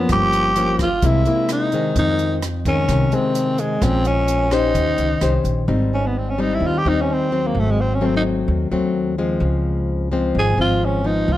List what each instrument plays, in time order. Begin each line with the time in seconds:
Already playing: nylon-string guitar F3 A#3 C#4, tenor saxophone B3
0.09 upright bass G1, nylon-string guitar G2, tenor saxophone G4, kick, cross-stick, closed hi-hat
0.33 closed hi-hat
0.56 nylon-string guitar F3 A#3 C#4, closed hi-hat
0.79 tenor saxophone F4, kick, cross-stick, closed hi-hat
1.02 upright bass C2, nylon-string guitar C3 G#3 A#3 E4, kick, closed hi-hat
1.07 tenor saxophone E4
1.26 nylon-string guitar G#3 A#3 E4, closed hi-hat
1.49 tenor saxophone D#4, cross-stick, closed hi-hat
1.72 nylon-string guitar D#3 G#3 C4, closed hi-hat
1.96 upright bass F2, nylon-string guitar F2, tenor saxophone D#4, kick, closed hi-hat
2.19 closed hi-hat
2.42 cross-stick, closed hi-hat
2.65 nylon-string guitar D#3 G#3, tenor saxophone C#4, kick, closed hi-hat
2.89 upright bass C2, nylon-string guitar C3, kick, cross-stick, closed hi-hat
3.12 nylon-string guitar D#3 G#3 C4, tenor saxophone C4, closed hi-hat
3.35 closed hi-hat
3.58 tenor saxophone G#3, closed hi-hat
3.81 upright bass A#1, nylon-string guitar A#2 F3 G#3 C#4, tenor saxophone C4, kick, cross-stick, closed hi-hat
4.05 tenor saxophone C#4, closed hi-hat
4.28 closed hi-hat
4.51 nylon-string guitar C#4 G4 C5, tenor saxophone D#4, cross-stick, closed hi-hat
4.75 upright bass D#2, nylon-string guitar D#3, kick, closed hi-hat
4.98 upright bass C#2, closed hi-hat
5.21 upright bass C2, nylon-string guitar C#4 G4 C5, cross-stick, closed hi-hat
5.44 upright bass A#1, closed hi-hat
5.68 upright bass G#1, nylon-string guitar G#2 G3 C4 D#4
5.94 tenor saxophone C#4
6.07 tenor saxophone B3
6.18 tenor saxophone C4
6.30 tenor saxophone C#4
6.38 nylon-string guitar G3 C4 D#4, tenor saxophone D#4
6.54 tenor saxophone E4
6.60 upright bass D#2, nylon-string guitar D#3
6.67 tenor saxophone F4
6.78 tenor saxophone G4
6.85 upright bass D#2, nylon-string guitar G3 C4 D#4, tenor saxophone D#4
7.01 tenor saxophone C#4
7.13 tenor saxophone C4
7.32 nylon-string guitar F#3 C4
7.47 tenor saxophone A#3
7.55 upright bass G#1, nylon-string guitar G#2
7.59 tenor saxophone A3
7.71 tenor saxophone G#3
7.81 tenor saxophone C4
7.94 tenor saxophone C#4
8.01 nylon-string guitar F#3 A3 C4
8.05 tenor saxophone C4
8.17 tenor saxophone D#4
8.48 upright bass D#2, nylon-string guitar D#3
8.71 upright bass D#2, nylon-string guitar F#3 A3 C4
9.18 nylon-string guitar F3 G#3 C4
9.40 upright bass C#2, nylon-string guitar C#3
10.12 nylon-string guitar F3 G#3 C4
10.35 upright bass G#1, nylon-string guitar G#2
10.39 tenor saxophone G#4
10.57 upright bass G#1, nylon-string guitar F3 G#3 C4, tenor saxophone F4
10.85 tenor saxophone C#4
11.04 nylon-string guitar F3 B3, tenor saxophone D#4
11.28 upright bass C#2, nylon-string guitar C#3
11.32 tenor saxophone F4